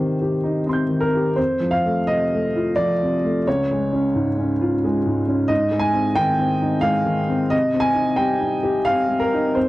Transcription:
Already playing: C3 D#3 C4 G4 C5
0.21 G4
0.44 D#4
0.66 C4 D#5 C6
0.73 G6
0.89 D#3
1.00 A#4
1.15 G4
1.36 F2 C5
1.60 F3
1.71 F5
1.85 A3
2.07 C3 D#5
2.33 A3
2.56 F4
2.76 F3 D5
3.03 C3
3.24 A3
3.47 C#2 C#5
3.71 G#3
3.92 C#4
4.15 G#2
4.38 C#4
4.61 F4
4.84 G#3
5.06 G#2
5.28 C#4
5.48 G#2 D#5
5.71 G#3
5.79 G#5
5.93 C4
6.15 D#3 G5
6.39 C4
6.62 D#4
6.81 G#3 F5
7.06 D#3
7.29 C4
7.50 C3 D#5
7.74 C4
7.80 G#5
7.95 D#4
8.16 G3 G5
8.40 D#4
8.63 G4
8.85 C4 F5
9.09 G3
9.20 A#4
9.33 D#4
9.55 F2 C5

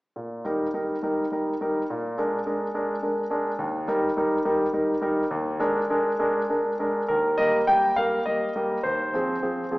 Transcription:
0.16 A#2
0.45 G3 D#4 A#4
0.74 G3 D#4 A#4
1.03 G3 D#4 A#4
1.32 G3 D#4 A#4
1.61 G3 D#4 A#4
1.90 A#2
2.18 G#3 D4 A#4
2.46 G#3 D4 A#4
2.74 G#3 D4 A#4
3.03 G#3 D4 A#4
3.30 G#3 D4 A#4
3.59 D#2
3.88 G3 D#4 A#4
4.17 G3 D#4 A#4
4.45 G3 D#4 A#4
4.73 G3 D#4 A#4
5.02 G3 D#4 A#4
5.31 D#2
5.60 G#3 D4 A#4
5.90 G#3 D4 A#4
6.19 G#3 D4 A#4
6.49 G#3 D4 A#4
6.79 G#3 D4 A#4
7.08 D#2 A#4
7.38 G3 A#3 A#4 D#5
7.67 G3 A#3 A#4 G5
7.96 G3 A#3 A#4 F5
8.26 G3 A#3 A#4 D#5
8.56 G3 A#3 A#4
8.83 D#2 C5
9.14 F3 C4 G#4
9.42 F3 C4 G#4
9.71 F3 C4 G#4

